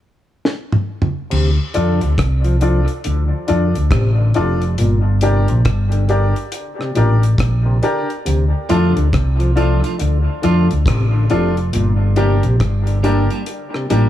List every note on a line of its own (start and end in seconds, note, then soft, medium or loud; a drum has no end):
0.45 snare medium
0.72 mid tom medium
1.02 floor tom medium
1.30 1.57 D2 loud
1.30 1.50 C3 medium
1.30 crash loud
1.74 2.00 F2 medium
1.74 1.93 D3 medium
1.74 1.99 D4 loud
1.74 1.99 F4 medium
1.74 1.99 A4 medium
1.74 1.99 D5 loud
1.74 closed hi-hat medium
2.01 2.18 D2 medium
2.01 2.13 D3 medium
2.01 closed hi-hat medium
2.18 2.85 C2 loud
2.18 kick loud
2.18 cross-stick loud
2.18 closed hi-hat loud
2.44 2.56 F3 medium
2.44 closed hi-hat medium
2.61 2.80 F3 medium
2.61 2.86 D4 loud
2.61 2.86 F4 medium
2.61 2.86 A4 medium
2.61 2.86 D5 loud
2.61 closed hi-hat medium
2.88 closed hi-hat medium
3.04 3.31 D2 medium
3.04 3.24 D3 medium
3.04 closed hi-hat medium
3.47 3.74 F2 medium
3.47 3.67 D3 medium
3.47 3.72 D4 medium
3.47 3.72 F4 medium
3.47 3.73 A4 medium
3.47 3.73 D5 loud
3.47 closed hi-hat medium
3.75 3.91 D2 medium
3.75 closed hi-hat medium
3.91 4.31 A1 medium
3.91 4.11 C3 medium
3.91 kick loud
3.91 cross-stick loud
3.91 closed hi-hat medium
4.18 4.30 D3 medium
4.34 4.76 F1 medium
4.34 4.54 C3 medium
4.34 4.59 D4 loud
4.34 4.60 F4 medium
4.34 4.60 A4 medium
4.34 4.60 D5 loud
4.34 closed hi-hat medium
4.62 closed hi-hat soft
4.78 5.46 G1 loud
4.78 4.98 A#2 loud
4.78 closed hi-hat loud
5.21 5.41 C3 medium
5.21 5.46 D4 loud
5.21 5.47 G4 medium
5.21 5.47 A#4 medium
5.21 5.47 D5 loud
5.21 closed hi-hat medium
5.48 5.65 A#1 medium
5.48 5.61 C3 medium
5.48 closed hi-hat medium
5.65 6.32 G1 medium
5.65 kick loud
5.65 cross-stick loud
5.65 closed hi-hat medium
5.92 6.04 D3 medium
5.92 closed hi-hat medium
6.08 6.28 D3 medium
6.08 6.33 D4 medium
6.08 6.33 G4 medium
6.08 6.34 A#4 medium
6.08 6.34 D5 loud
6.08 closed hi-hat medium
6.36 closed hi-hat medium
6.52 closed hi-hat loud
6.79 6.91 C3 medium
6.79 cross-stick medium
6.95 7.36 A1 medium
6.95 7.14 A#2 medium
6.95 7.20 D4 medium
6.95 7.20 G4 medium
6.95 7.21 A#4 medium
6.95 7.21 D5 loud
6.95 closed hi-hat medium
7.23 closed hi-hat medium
7.38 7.79 A#1 medium
7.38 kick loud
7.38 cross-stick loud
7.38 closed hi-hat medium
7.66 7.77 C3 medium
7.82 8.02 D3 medium
7.82 8.07 D4 loud
7.82 8.07 G4 loud
7.82 8.07 A#4 loud
7.82 8.08 D5 loud
7.82 closed hi-hat medium
8.10 closed hi-hat medium
8.25 8.52 D2 loud
8.25 8.45 C3 medium
8.25 closed hi-hat loud
8.69 8.95 F2 loud
8.69 8.89 D3 medium
8.69 8.92 F3 medium
8.69 8.92 A3 medium
8.69 8.94 D4 medium
8.69 8.92 D4 loud
8.69 8.94 F4 medium
8.69 8.92 F4 loud
8.69 8.94 A4 medium
8.69 8.94 D5 loud
8.69 closed hi-hat medium
8.96 9.12 D2 medium
8.96 9.08 D3 medium
8.96 closed hi-hat medium
9.13 9.80 C2 loud
9.13 kick loud
9.13 cross-stick loud
9.13 closed hi-hat medium
9.39 9.51 F3 medium
9.39 closed hi-hat medium
9.56 9.75 F3 medium
9.56 9.79 F3 medium
9.56 9.80 A3 medium
9.56 9.80 D4 medium
9.56 9.80 D4 loud
9.56 9.80 F4 medium
9.56 9.81 A4 medium
9.56 9.81 D5 loud
9.56 closed hi-hat medium
9.84 9.95 F3 medium
9.84 9.95 A3 medium
9.84 9.95 D4 medium
9.84 9.94 F4 medium
9.84 closed hi-hat medium
9.99 10.25 D2 loud
9.99 10.18 D3 medium
9.99 closed hi-hat medium
10.42 10.69 F2 medium
10.42 10.62 D3 medium
10.42 10.66 F3 medium
10.42 10.66 A3 medium
10.42 10.67 D4 medium
10.42 10.67 D4 loud
10.42 10.68 F4 medium
10.42 10.67 F4 loud
10.42 10.68 A4 medium
10.42 10.68 D5 medium
10.42 closed hi-hat medium
10.71 10.86 D2 medium
10.71 closed hi-hat medium
10.86 11.26 A1 medium
10.86 11.06 C3 medium
10.86 kick loud
10.86 cross-stick loud
10.86 closed hi-hat loud
11.14 11.25 D3 medium
11.30 11.70 F1 medium
11.30 11.49 C3 medium
11.30 11.53 F3 medium
11.30 11.53 A3 medium
11.30 11.54 D4 medium
11.30 11.53 D4 medium
11.30 11.54 F4 loud
11.30 11.54 F4 medium
11.30 11.55 A4 loud
11.30 11.55 D5 loud
11.30 closed hi-hat medium
11.57 closed hi-hat soft
11.73 12.41 G1 loud
11.73 11.92 A#2 loud
11.73 closed hi-hat loud
12.16 12.36 C3 medium
12.16 12.40 G3 medium
12.16 12.40 A#3 medium
12.16 12.41 D4 loud
12.16 12.40 D4 medium
12.16 12.41 G4 medium
12.16 12.41 A#4 medium
12.16 12.42 D5 medium
12.16 closed hi-hat medium
12.43 12.59 A#1 medium
12.43 12.56 C3 medium
12.43 closed hi-hat medium
12.60 13.27 G1 medium
12.60 kick loud
12.60 cross-stick loud
12.60 closed hi-hat loud
12.87 12.98 D3 medium
12.87 closed hi-hat medium
13.03 13.23 D3 medium
13.03 13.26 G3 medium
13.03 13.26 A#3 medium
13.03 13.28 D4 medium
13.03 13.26 D4 medium
13.03 13.28 G4 medium
13.03 13.27 G4 medium
13.03 13.28 A#4 medium
13.03 13.28 D5 loud
13.03 closed hi-hat medium
13.30 13.42 G3 medium
13.30 13.42 A#3 medium
13.30 13.42 D4 medium
13.30 13.41 G4 medium
13.30 closed hi-hat medium
13.46 closed hi-hat medium
13.74 13.86 C3 medium
13.74 cross-stick medium
13.90 14.09 A1 medium
13.90 14.09 A#2 medium
13.90 14.09 G3 medium
13.90 14.09 A#3 medium
13.90 14.09 D4 medium
13.90 14.09 G4 medium
13.90 14.09 A#4 medium
13.90 14.09 D5 medium
13.90 closed hi-hat medium